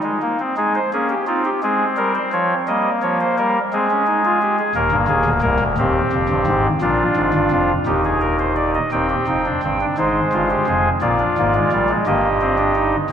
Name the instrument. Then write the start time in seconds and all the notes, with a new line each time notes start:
pipe organ
Already playing: D#4
0.03 G#3
0.22 A#3
0.40 C4
0.57 G#3 D#4 G#4
0.75 C5
0.93 A#3 C#4 G#4
1.10 G4
1.27 C4 D#4 F4
1.45 G4
1.63 G#3 C4 G#4
1.97 G3 A#4
2.15 C5
2.33 F3 C#5
2.68 G3 A#3 D#5
3.03 F3 C#5
3.21 C5
3.38 G3 A#4
3.73 G#3 C4 G#4
3.91 C#4
4.07 D#4
4.25 F4
4.42 G4
4.59 G#4
4.75 D#1 D#2 A#3 A#4
4.92 G1 G2
5.08 D#1 D#2 G#4
5.25 D1 D2
5.42 C1 C2 A#4
5.60 D1 D2
5.78 D#1 D#2 C4 G4
6.13 F1 F2
6.29 G1 G2
6.47 G#1 G#2
6.81 A#1 A#2 D4 F4
7.16 G#1 G#2
7.34 G1 G2
7.51 F1 F2
7.86 D#1 D#2 D#4 G4
8.05 G#4
8.21 A#4
8.39 C5
8.56 D5
8.74 D#5
8.92 D#1 D#2 C4 D#4 G5
9.10 G4
9.27 F1 F2 D#4
9.46 D4
9.63 G1 G2 C4
9.81 D4
9.98 G#1 G#2 G#3 D#4 C5
10.33 G1 G2 F4
10.50 G4
10.67 F1 F2 G#4
11.01 A#1 A#2 A#3 F4 D5
11.20 D4
11.38 G#1 G#2 A#3
11.55 G#3
11.72 A#1 A#2 G3
11.89 G#3
12.06 G1 G2 A#3 G4 D#5
12.41 C4
12.58 D4
12.76 D#4